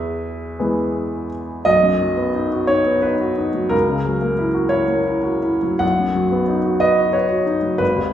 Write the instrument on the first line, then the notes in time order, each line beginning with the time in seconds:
upright piano
Already playing: E2 G#4 B4 E5
0.59 E3 G#3 B3
1.65 B1 D#5
1.83 F#2
2.01 F#3
2.17 B3
2.35 D#4
2.52 F#4
2.67 D#4 C#5
2.86 B3
3.02 D#4 B4
3.21 F#4
3.38 D#4
3.54 F#3
3.69 C#2 A#4
3.88 C#3
4.06 F#3
4.22 A#3
4.39 E4
4.55 F#4
4.69 E4 C#5
4.87 A#3
5.05 E4
5.24 F#4
5.42 E4
5.63 F#3
5.79 B1 F#5
5.98 F#2
6.15 F#3
6.32 B3
6.48 D#4
6.65 F#4
6.80 B4 D#5
6.99 F#4
7.13 B4 C#5
7.31 F#4
7.47 D#4
7.63 F#3
7.78 G#1 B4
7.96 D#2